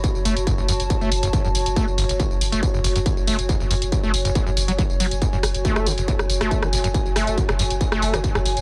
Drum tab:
HH |x-oxx-oxx-oxx-ox|x-oxx-oxx-oxx-ox|x-oxx-oxx-oxx-ox|x-oxx-oxx-oxx-ox|
TB |xxxxxxxxxxxxxxxx|xxxxxxxxxxxxxxxx|xxxxxxxxxxxxxxxx|xxxxxxxxxxxxxxxx|
SD |----------------|----------------|----------------|--r--r---r-r-r--|
BD |o---o---o---o---|o---o---o---o---|o---o---o---o---|o---o---o---o---|

HH |x-oxx-oxx-oxx-ox|
TB |xxxxxxxxxxxxxxxx|
SD |--r--r---r-r-r--|
BD |o---o---o---o---|